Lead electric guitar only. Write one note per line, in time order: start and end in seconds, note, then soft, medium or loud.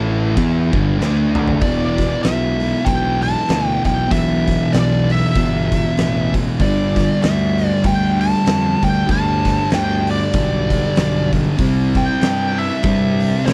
1.62 2.22 D5 medium
2.23 2.88 E5 medium
2.85 3.22 G5 medium
3.23 3.68 A5 loud
3.68 3.81 G5 loud
3.86 4.10 G5 loud
4.12 4.73 E5 medium
4.73 5.11 D5 medium
5.12 6.32 E5 medium
6.62 7.22 D5 medium
7.23 7.68 E5 medium
7.68 7.81 D5 medium
7.86 8.20 G5 loud
8.21 8.84 A5 loud
8.84 9.08 G5 loud
9.11 9.69 A5 loud
9.74 10.07 G5 medium
10.11 11.30 D5 medium
11.97 12.61 G5 loud
12.58 13.46 E5 loud
13.46 13.53 D5 medium